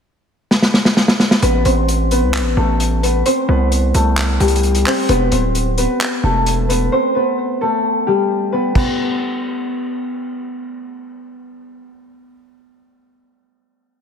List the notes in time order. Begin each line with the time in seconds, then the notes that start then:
0.51 snare
0.62 snare
0.74 snare
0.85 snare
0.97 snare
1.08 snare
1.20 snare
1.31 snare
1.42 A1 B3 B4, closed hi-hat
1.65 A1 C4 C5, closed hi-hat
1.89 closed hi-hat
2.11 B3 B4, closed hi-hat
2.23 C2
2.34 clap, closed hi-hat
2.40 A1
2.57 A1 A3 A4
2.80 closed hi-hat
3.03 B3 B4, closed hi-hat
3.26 C4 C5, closed hi-hat
3.49 C2 B3 B4
3.72 closed hi-hat
3.94 C2 A3 A4, closed hi-hat
4.17 clap, closed hi-hat
4.40 C2 G3 G4, closed hi-hat
4.48 closed hi-hat
4.56 closed hi-hat
4.63 closed hi-hat
4.75 closed hi-hat
4.86 C4 C5, clap, open hi-hat
5.09 E1 B3 B4, closed hi-hat
5.32 D1 C4 C5, closed hi-hat
5.55 closed hi-hat
5.78 B3 B4, closed hi-hat
6.01 clap, closed hi-hat
6.23 E1 A3 A4
6.46 closed hi-hat
6.69 B3 B4, closed hi-hat
6.92 C4 C5
7.15 B3 B4
7.61 A3 A4
8.07 G3 G4
8.52 B3 B4
8.75 B3, kick, crash